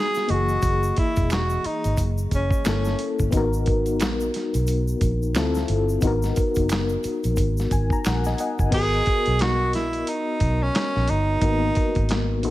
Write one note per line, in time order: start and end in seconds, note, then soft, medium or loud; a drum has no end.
0.00 0.25 G#3 medium
0.00 0.26 B3 medium
0.00 0.27 D#4 medium
0.00 0.28 F#4 medium
0.00 0.32 G#4 loud
0.15 snare soft
0.15 shaker soft
0.28 0.57 F#1 medium
0.28 2.60 A#3 medium
0.28 0.97 F#4 loud
0.28 2.61 D#5 soft
0.28 closed hi-hat medium
0.32 2.62 E3 soft
0.32 2.64 G#4 medium
0.49 shaker soft
0.62 0.91 F#1 medium
0.62 kick loud
0.62 closed hi-hat medium
0.62 shaker soft
0.83 shaker soft
0.96 1.34 E4 medium
0.96 kick medium
0.96 closed hi-hat medium
1.16 1.56 E1 medium
1.16 kick medium
1.16 closed hi-hat soft
1.16 shaker soft
1.30 1.68 F#4 medium
1.30 finger snap medium
1.30 snare loud
1.30 clap medium
1.30 closed hi-hat medium
1.30 shaker medium
1.50 shaker soft
1.64 2.07 D#4 medium
1.64 muted fingered electric bass stroke soft
1.64 closed hi-hat medium
1.84 1.96 G#1 medium
1.84 closed hi-hat soft
1.84 shaker soft
1.97 2.26 F#1 medium
1.97 kick medium
1.97 closed hi-hat medium
1.97 shaker medium
2.18 shaker soft
2.31 2.48 F#1 medium
2.31 2.65 C#4 medium
2.31 kick medium
2.31 closed hi-hat medium
2.31 shaker soft
2.50 kick medium
2.50 shaker soft
2.65 2.93 G1 loud
2.65 3.33 A#3 medium
2.65 3.33 C#4 medium
2.65 3.17 C#4 medium
2.65 3.34 E4 medium
2.65 3.34 A4 medium
2.65 finger snap medium
2.65 snare medium
2.65 clap medium
2.65 closed hi-hat medium
2.65 shaker medium
2.85 snare soft
2.85 shaker soft
2.99 closed hi-hat medium
3.19 3.31 G1 medium
3.19 kick medium
3.19 shaker soft
3.31 4.01 G#1 loud
3.31 5.30 B3 medium
3.31 5.31 D#4 medium
3.31 kick loud
3.31 closed hi-hat medium
3.31 shaker soft
3.35 5.32 F#4 medium
3.35 5.33 A#4 medium
3.53 shaker soft
3.66 kick medium
3.66 closed hi-hat medium
3.86 closed hi-hat soft
3.86 shaker medium
4.00 4.28 A#1 medium
4.00 finger snap medium
4.00 snare loud
4.00 clap medium
4.00 closed hi-hat medium
4.00 shaker medium
4.20 shaker soft
4.34 snare soft
4.34 closed hi-hat medium
4.54 4.93 B1 medium
4.54 closed hi-hat soft
4.54 shaker soft
4.67 closed hi-hat medium
4.67 shaker medium
4.88 shaker soft
5.01 5.36 A#1 medium
5.01 kick medium
5.01 closed hi-hat medium
5.01 shaker soft
5.22 shaker soft
5.35 5.63 D2 medium
5.35 6.03 C4 medium
5.35 6.03 E4 medium
5.35 6.04 F4 medium
5.35 finger snap medium
5.35 snare medium
5.35 clap medium
5.35 closed hi-hat medium
5.35 shaker medium
5.39 6.04 A4 medium
5.55 snare soft
5.55 shaker soft
5.68 5.97 G1 medium
5.68 closed hi-hat medium
5.89 shaker soft
6.01 6.30 G#1 loud
6.01 8.67 B3 medium
6.01 8.68 D#4 medium
6.01 kick loud
6.01 closed hi-hat medium
6.01 shaker soft
6.05 8.69 F#4 medium
6.05 8.70 A#4 medium
6.22 snare soft
6.22 shaker soft
6.36 kick medium
6.36 closed hi-hat medium
6.36 shaker soft
6.55 6.95 F#1 medium
6.55 kick medium
6.55 closed hi-hat soft
6.55 shaker medium
6.69 finger snap medium
6.69 snare loud
6.69 clap medium
6.69 closed hi-hat medium
6.69 shaker medium
6.89 shaker soft
7.03 muted fingered electric bass stroke soft
7.03 closed hi-hat medium
7.03 shaker soft
7.24 7.35 A#1 medium
7.24 closed hi-hat soft
7.24 shaker soft
7.36 7.65 G#1 medium
7.36 kick medium
7.36 closed hi-hat medium
7.36 shaker medium
7.57 snare soft
7.57 shaker soft
7.71 7.88 G#1 medium
7.71 7.90 G#5 medium
7.71 kick medium
7.71 closed hi-hat medium
7.71 shaker soft
7.90 8.05 A#5 medium
7.90 kick medium
7.90 shaker soft
8.05 8.33 A#1 medium
8.05 8.24 F#5 medium
8.05 finger snap medium
8.05 snare medium
8.05 clap medium
8.05 closed hi-hat medium
8.05 shaker medium
8.24 8.39 D#5 medium
8.24 8.38 G#5 medium
8.24 snare soft
8.24 shaker soft
8.38 8.71 D#5 medium
8.38 8.59 F#5 medium
8.38 closed hi-hat medium
8.38 shaker soft
8.59 8.70 G1 medium
8.59 8.92 G#5 medium
8.59 kick medium
8.59 shaker soft
8.70 9.00 G#1 loud
8.70 11.37 B3 medium
8.70 9.43 G#4 loud
8.70 11.38 D#5 medium
8.70 kick loud
8.70 closed hi-hat medium
8.70 crash medium
8.75 11.39 F#4 medium
8.75 8.82 A4 medium
8.83 11.43 A#4 medium
9.06 kick medium
9.06 closed hi-hat medium
9.26 9.75 B1 medium
9.26 closed hi-hat soft
9.39 9.74 F#4 loud
9.39 snare loud
9.39 clap medium
9.39 closed hi-hat medium
9.73 10.02 A#1 medium
9.73 10.10 E4 medium
9.73 snare soft
9.73 closed hi-hat medium
9.93 closed hi-hat soft
10.07 10.64 D#4 medium
10.07 closed hi-hat medium
10.40 10.68 B1 medium
10.40 kick medium
10.40 closed hi-hat medium
10.63 11.11 C#4 medium
10.75 snare loud
10.75 clap medium
10.75 closed hi-hat medium
10.96 11.07 A#1 medium
10.96 snare soft
11.08 11.37 G1 medium
11.08 12.44 D#4 medium
11.08 closed hi-hat medium
11.41 11.69 G#1 loud
11.41 11.50 A#3 medium
11.41 12.43 D#4 medium
11.41 12.44 F#4 medium
11.41 12.45 A#4 medium
11.41 kick loud
11.41 closed hi-hat medium
11.49 12.42 B3 medium
11.75 kick medium
11.75 closed hi-hat medium
11.95 12.44 G#1 medium
11.95 kick medium
11.95 closed hi-hat soft
12.09 snare loud
12.09 clap medium
12.09 closed hi-hat medium
12.43 12.51 A#1 loud
12.43 12.51 B3 soft
12.43 12.51 D#4 soft
12.43 12.51 F#4 soft
12.43 12.51 A4 soft
12.43 closed hi-hat medium